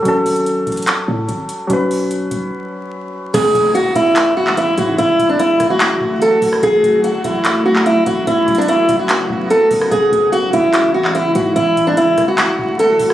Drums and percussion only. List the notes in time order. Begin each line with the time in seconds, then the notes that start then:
0.05 kick, closed hi-hat
0.26 closed hi-hat, open hi-hat
0.36 closed hi-hat
0.46 closed hi-hat
0.67 kick, closed hi-hat
0.72 closed hi-hat
0.77 closed hi-hat
0.82 closed hi-hat
0.87 clap, closed hi-hat
1.08 kick
1.29 kick, closed hi-hat
1.49 closed hi-hat
1.70 kick, closed hi-hat
1.91 open hi-hat
2.11 closed hi-hat
2.31 kick, closed hi-hat
3.34 kick, closed hi-hat, crash
3.55 kick, closed hi-hat
3.75 closed hi-hat
3.96 kick, closed hi-hat
4.16 clap, closed hi-hat
4.47 clap
4.57 closed hi-hat
4.78 kick, closed hi-hat
4.98 kick, closed hi-hat
5.19 kick, closed hi-hat
5.39 closed hi-hat
5.60 kick, cross-stick, closed hi-hat
5.80 clap, closed hi-hat
6.01 kick
6.22 closed hi-hat
6.42 kick, open hi-hat
6.53 cross-stick
6.63 kick, closed hi-hat
6.83 kick, closed hi-hat
7.04 closed hi-hat
7.24 kick, closed hi-hat
7.45 clap, closed hi-hat
7.76 clap
7.86 closed hi-hat
8.06 kick, closed hi-hat
8.27 kick, closed hi-hat
8.48 kick, closed hi-hat
8.55 closed hi-hat
8.62 closed hi-hat
8.68 closed hi-hat
8.89 kick, closed hi-hat
9.09 clap, closed hi-hat
9.30 kick
9.50 closed hi-hat
9.71 kick, open hi-hat
9.81 cross-stick
9.92 kick, closed hi-hat
10.12 kick, closed hi-hat
10.33 closed hi-hat
10.53 kick, closed hi-hat
10.73 clap, closed hi-hat
11.05 clap
11.15 closed hi-hat
11.35 kick, closed hi-hat
11.56 kick, closed hi-hat
11.77 kick, closed hi-hat
11.97 closed hi-hat
12.18 kick, cross-stick, closed hi-hat
12.38 clap, closed hi-hat
12.59 kick
12.79 closed hi-hat
12.99 kick, open hi-hat
13.10 cross-stick